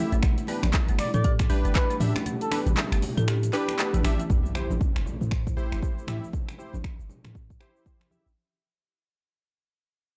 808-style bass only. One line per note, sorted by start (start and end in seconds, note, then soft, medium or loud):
0.12 0.21 A1 medium
0.23 0.36 A1 loud
0.63 0.72 A1 medium
0.89 0.97 G1 medium
1.14 1.47 A2 loud
1.50 1.63 A1 loud
1.65 1.73 G1 medium
2.00 2.13 A2 medium
2.66 2.75 A1 medium
2.92 3.01 G1 medium
3.18 3.51 A2 loud
3.94 4.03 A1 medium
4.04 4.17 A1 medium
4.30 4.42 A1 loud
4.70 4.79 A1 medium
4.96 5.04 G1 medium
5.21 5.54 A2 medium
5.57 5.70 A1 loud
5.72 5.81 G1 medium
6.08 6.20 A2 medium
6.74 6.82 A1 medium
6.99 7.08 G1 medium
7.25 7.58 A2 loud
8.26 8.35 A1 medium